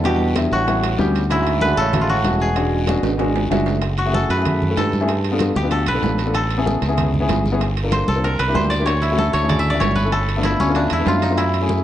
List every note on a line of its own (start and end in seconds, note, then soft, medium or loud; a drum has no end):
0.00 0.46 E2 medium
0.00 0.11 F#4 medium
0.00 1.47 A4 medium
0.00 1.20 B4 medium
0.00 0.76 C#5 loud
0.00 high bongo medium
0.04 0.34 B2 medium
0.04 0.26 G3 medium
0.04 0.27 B3 medium
0.04 0.27 D4 medium
0.04 0.27 F#4 medium
0.04 0.59 G4 medium
0.04 high conga soft
0.04 high timbale medium
0.04 long guiro medium
0.20 high bongo soft
0.20 high conga soft
0.36 0.58 G3 medium
0.36 0.58 B3 medium
0.36 0.58 D4 medium
0.36 0.59 E4 medium
0.36 high bongo medium
0.36 high conga medium
0.36 high timbale medium
0.36 short guiro medium
0.51 0.96 A1 medium
0.51 0.96 A2 medium
0.51 2.07 F#4 medium
0.51 high conga soft
0.51 short guiro medium
0.67 0.89 G3 medium
0.67 0.89 B3 medium
0.67 0.90 C#4 medium
0.67 0.90 E4 medium
0.67 high bongo medium
0.67 high conga soft
0.67 high timbale medium
0.67 long guiro medium
0.83 high bongo soft
0.83 high conga soft
0.83 high timbale loud
0.98 1.72 D2 medium
0.98 1.20 G3 medium
0.98 1.21 B3 medium
0.98 1.21 C#4 medium
0.98 1.21 G4 loud
0.98 high bongo soft
0.98 low bongo medium
0.98 high conga medium
0.98 short guiro medium
1.14 high conga soft
1.14 high timbale medium
1.14 short guiro medium
1.29 1.61 G#2 medium
1.29 1.52 G#3 medium
1.29 1.52 C#4 medium
1.29 1.53 E4 medium
1.29 2.07 E4 medium
1.29 1.53 F#4 medium
1.29 high bongo medium
1.29 high conga soft
1.29 high timbale medium
1.29 long guiro medium
1.46 high bongo soft
1.46 high conga soft
1.46 high timbale medium
1.61 1.78 D3 medium
1.61 1.84 G#3 medium
1.61 1.84 C#4 medium
1.61 1.84 E4 medium
1.61 1.84 F#4 medium
1.61 3.39 B4 loud
1.61 high bongo medium
1.61 high conga medium
1.61 short guiro medium
1.77 2.22 A1 medium
1.77 2.01 C#3 medium
1.77 2.47 A4 loud
1.77 high conga soft
1.77 short guiro medium
1.93 2.15 G#3 medium
1.93 2.15 C#4 medium
1.93 2.16 E4 medium
1.93 2.16 F#4 medium
1.93 high bongo medium
1.93 high conga soft
1.93 low conga medium
1.93 high timbale medium
1.93 long guiro medium
2.01 2.09 G#2 medium
2.01 2.16 F4 medium
2.09 2.39 A2 medium
2.09 3.98 F#4 medium
2.09 high bongo soft
2.09 high conga soft
2.24 2.98 E1 medium
2.24 2.47 G#3 medium
2.24 2.47 C#4 medium
2.24 2.47 E4 medium
2.24 2.47 F#4 medium
2.24 high bongo soft
2.24 low bongo medium
2.24 high conga medium
2.24 high timbale medium
2.24 short guiro medium
2.40 3.48 B2 medium
2.40 4.20 G#4 medium
2.40 short guiro medium
2.56 2.78 G#3 medium
2.56 2.78 C#4 medium
2.56 2.79 D4 medium
2.56 2.79 F#4 medium
2.56 high bongo medium
2.56 high conga soft
2.56 high timbale medium
2.56 long guiro medium
2.72 high bongo soft
2.72 high conga soft
2.87 3.10 G#3 medium
2.87 3.10 C#4 medium
2.87 3.10 D4 medium
2.87 3.11 F#4 medium
2.87 high bongo medium
2.87 high conga medium
2.87 high timbale medium
2.87 short guiro medium
3.03 3.47 G#1 medium
3.03 high conga soft
3.03 high timbale medium
3.03 short guiro medium
3.18 3.41 G#3 medium
3.18 3.41 C#4 medium
3.18 3.41 D4 medium
3.18 3.42 F#4 medium
3.18 high bongo medium
3.18 high conga soft
3.18 high timbale medium
3.18 long guiro medium
3.35 3.50 G#5 medium
3.35 high bongo soft
3.35 high conga soft
3.35 low timbale medium
3.50 4.24 F#1 medium
3.50 3.73 G#3 loud
3.50 3.73 C#4 medium
3.50 3.73 D4 medium
3.50 3.73 F#4 loud
3.50 3.80 E5 medium
3.50 high bongo soft
3.50 low bongo medium
3.50 high conga medium
3.50 low timbale medium
3.50 short guiro medium
3.66 high conga soft
3.66 low timbale medium
3.66 short guiro medium
3.82 high bongo medium
3.82 high conga soft
3.82 high timbale medium
3.82 long guiro medium
3.98 5.62 F#4 medium
3.98 high conga soft
3.98 high timbale medium
4.06 4.28 A3 medium
4.06 4.28 C#4 medium
4.06 4.29 E4 medium
4.06 4.29 G#4 medium
4.13 4.77 A4 medium
4.13 high bongo medium
4.13 high conga medium
4.13 low timbale medium
4.13 short guiro medium
4.29 4.74 F#2 medium
4.29 5.88 B4 medium
4.29 high conga soft
4.29 high timbale medium
4.29 short guiro medium
4.37 4.60 A3 medium
4.37 4.60 C#4 medium
4.37 4.60 E4 medium
4.37 4.60 G#4 medium
4.45 high bongo medium
4.45 high conga soft
4.45 low conga medium
4.45 high timbale medium
4.45 long guiro medium
4.62 high conga soft
4.62 low conga medium
4.69 4.91 A3 medium
4.69 4.91 C#4 medium
4.69 4.92 E4 medium
4.69 4.92 A4 medium
4.77 5.51 G2 medium
4.77 5.71 A4 medium
4.77 high bongo medium
4.77 low bongo medium
4.77 high conga medium
4.77 high timbale medium
4.77 low timbale medium
4.77 short guiro medium
4.92 high conga medium
4.92 short guiro medium
5.01 5.09 A3 medium
5.01 5.09 C#4 medium
5.01 5.09 E4 medium
5.01 5.09 G#4 loud
5.08 high bongo medium
5.08 high conga soft
5.08 high timbale medium
5.08 long guiro medium
5.24 high bongo soft
5.24 high conga soft
5.24 high timbale medium
5.32 5.54 B3 medium
5.32 5.55 D4 medium
5.32 5.55 F4 medium
5.32 5.55 A4 medium
5.39 high bongo medium
5.39 high conga medium
5.39 high timbale medium
5.39 low timbale medium
5.39 short guiro medium
5.56 5.85 D2 medium
5.56 7.60 G4 medium
5.56 high conga medium
5.56 short guiro medium
5.63 5.85 B3 medium
5.63 5.86 D4 medium
5.63 5.86 F4 medium
5.63 5.86 B4 medium
5.71 6.34 A4 medium
5.71 high bongo medium
5.71 high conga soft
5.71 high timbale medium
5.71 long guiro medium
5.86 6.02 B1 medium
5.86 7.66 B4 medium
5.86 high conga soft
5.86 high timbale loud
5.93 6.16 B3 medium
5.93 6.17 D4 medium
5.93 6.17 F4 medium
5.93 6.17 A4 medium
6.03 6.76 A1 medium
6.03 high bongo medium
6.03 low bongo medium
6.03 high conga medium
6.03 low timbale medium
6.03 short guiro medium
6.18 high bongo soft
6.18 high conga soft
6.18 high timbale medium
6.18 short guiro medium
6.25 6.34 B3 medium
6.25 6.34 D4 medium
6.25 6.35 F4 medium
6.25 6.35 A4 medium
6.34 8.08 A4 medium
6.34 high bongo medium
6.34 high conga soft
6.34 high timbale medium
6.34 long guiro medium
6.51 high conga soft
6.51 high timbale medium
6.57 6.80 B3 medium
6.57 6.80 C#4 medium
6.57 6.81 E4 medium
6.57 6.81 G#4 medium
6.66 high bongo medium
6.66 high conga medium
6.66 low timbale medium
6.66 short guiro medium
6.82 7.26 C#2 medium
6.82 high conga soft
6.82 high timbale medium
6.82 short guiro medium
6.88 7.11 B3 medium
6.88 7.11 C#4 medium
6.88 7.12 E4 medium
6.88 7.12 G#4 medium
6.98 high bongo medium
6.98 high conga soft
6.98 low conga medium
6.98 high timbale medium
6.98 long guiro medium
7.14 high conga soft
7.14 low conga medium
7.20 7.43 B3 medium
7.20 7.43 C#4 medium
7.20 7.43 E4 medium
7.20 7.44 G#4 loud
7.29 8.02 G1 medium
7.29 high bongo medium
7.29 low bongo medium
7.29 high conga medium
7.29 high timbale medium
7.29 low timbale medium
7.29 short guiro medium
7.46 high conga medium
7.46 short guiro medium
7.52 7.60 B3 medium
7.52 7.61 C#4 medium
7.52 7.61 E4 medium
7.52 7.61 G#4 loud
7.61 high bongo medium
7.61 high conga soft
7.61 high timbale medium
7.61 long guiro medium
7.77 high bongo soft
7.77 high conga soft
7.77 high timbale medium
7.84 8.06 A#3 medium
7.84 8.06 D4 medium
7.84 8.07 F4 medium
7.84 8.07 A4 medium
7.92 8.45 C5 medium
7.92 high bongo medium
7.92 high conga medium
7.92 high timbale medium
7.92 low timbale medium
7.92 short guiro medium
8.08 8.38 C2 medium
8.08 8.30 A4 medium
8.08 high bongo soft
8.08 high conga medium
8.08 short guiro medium
8.16 8.24 A#3 medium
8.16 8.24 D4 medium
8.16 8.24 F4 medium
8.16 8.24 C5 medium
8.24 8.45 A#4 medium
8.24 high bongo medium
8.24 high conga soft
8.24 high timbale medium
8.24 long guiro medium
8.39 8.54 C2 medium
8.39 8.61 B4 medium
8.39 high conga soft
8.39 high timbale loud
8.47 8.70 A#3 medium
8.47 8.70 D4 medium
8.47 8.70 E4 medium
8.47 8.70 G4 medium
8.55 9.28 D2 medium
8.55 8.92 C5 medium
8.55 high bongo medium
8.55 low bongo medium
8.55 high conga medium
8.55 low timbale medium
8.55 short guiro medium
8.70 8.92 D5 medium
8.70 high bongo soft
8.70 high timbale medium
8.70 short guiro medium
8.80 8.87 A#3 medium
8.80 8.87 D4 medium
8.80 8.88 E4 medium
8.80 8.88 G4 medium
8.86 9.33 C#5 medium
8.86 high bongo medium
8.86 high conga soft
8.86 high timbale medium
8.86 long guiro medium
9.02 10.44 E4 medium
9.02 high conga soft
9.02 high timbale medium
9.11 9.33 A3 medium
9.11 9.33 C#4 medium
9.11 9.33 E4 medium
9.11 9.34 F#4 medium
9.18 10.12 A4 medium
9.18 high bongo medium
9.18 high conga medium
9.18 low timbale medium
9.18 short guiro medium
9.33 9.78 D2 medium
9.33 9.55 C#5 medium
9.33 high conga soft
9.33 high timbale medium
9.33 short guiro medium
9.43 9.64 A3 medium
9.43 9.65 C#4 medium
9.43 9.65 E4 medium
9.43 9.65 G#4 medium
9.49 9.70 D5 medium
9.49 high bongo medium
9.49 high conga soft
9.49 low conga medium
9.49 high timbale medium
9.49 long guiro medium
9.59 11.14 E5 medium
9.66 high conga soft
9.70 9.95 A3 medium
9.70 9.96 C#4 medium
9.70 9.86 D5 medium
9.74 9.96 E4 medium
9.74 9.96 F#4 medium
9.80 10.54 G1 medium
9.80 10.81 C#5 medium
9.80 high bongo medium
9.80 low bongo medium
9.80 high conga medium
9.80 high timbale medium
9.80 low timbale medium
9.80 short guiro medium
9.95 11.73 B4 medium
9.95 high conga medium
9.95 short guiro medium
10.04 10.12 A3 medium
10.04 10.13 C#4 medium
10.04 10.13 E4 medium
10.04 10.13 A4 medium
10.12 11.84 A4 medium
10.12 high bongo medium
10.12 high conga soft
10.12 high timbale medium
10.12 long guiro medium
10.29 high bongo soft
10.29 high conga soft
10.29 high timbale medium
10.36 10.58 A3 medium
10.36 10.59 B3 medium
10.36 10.59 D4 medium
10.36 10.59 F4 medium
10.43 10.92 E4 medium
10.43 high bongo medium
10.43 high conga medium
10.43 high timbale medium
10.43 low timbale medium
10.43 short guiro medium
10.60 10.89 D2 medium
10.60 10.81 C#4 medium
10.60 high bongo soft
10.60 high conga loud
10.60 short guiro medium
10.68 10.90 A3 medium
10.68 10.90 B3 medium
10.68 10.90 D4 medium
10.68 10.91 F4 medium
10.75 11.29 D4 medium
10.75 high bongo medium
10.75 high conga soft
10.75 high timbale medium
10.75 long guiro medium
10.90 11.06 E2 medium
10.90 11.14 E4 medium
10.90 high conga soft
10.90 high timbale medium
10.99 11.21 A3 medium
10.99 11.21 B3 medium
10.99 11.22 D4 medium
10.99 11.22 E4 medium
11.06 11.80 F#2 medium
11.06 11.43 F4 medium
11.06 high bongo medium
11.06 low bongo medium
11.06 high conga medium
11.06 low timbale medium
11.06 short guiro medium
11.22 11.43 D#4 medium
11.22 high bongo soft
11.22 high conga soft
11.22 high timbale medium
11.22 short guiro medium
11.30 11.38 A3 medium
11.30 11.38 B3 medium
11.30 11.39 D4 medium
11.30 11.39 F4 medium
11.37 11.84 E4 medium
11.37 high bongo medium
11.37 high conga soft
11.37 high timbale medium
11.37 long guiro medium
11.54 high conga soft
11.54 high timbale medium
11.61 11.84 A3 medium
11.61 11.84 C#4 medium
11.61 11.84 E4 medium
11.61 11.84 G#4 medium
11.69 high bongo medium
11.69 high conga medium
11.69 low timbale medium
11.69 short guiro medium